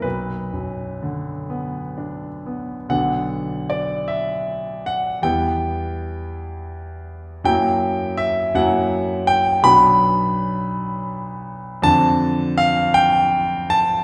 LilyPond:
<<
  \new Staff \with { instrumentName = "Grand piano" } { \time 6/8 \key b \minor \tempo 4. = 53 b'4. r4. | fis''4 d''8 e''4 fis''8 | g''2. | g''4 e''8 fis''4 g''8 |
b''2. | \key d \minor a''4 f''8 g''4 a''8 | }
  \new Staff \with { instrumentName = "Grand piano" } { \clef bass \time 6/8 \key b \minor b,,8 fis,8 d8 b8 d'8 b8 | <b,, d b d'>2. | <e, g b e'>2. | <fis, fis ais e'>4. <fis, fis ais e'>4. |
<b,, fis b d'>2. | \key d \minor <f, d d'>2. | }
>>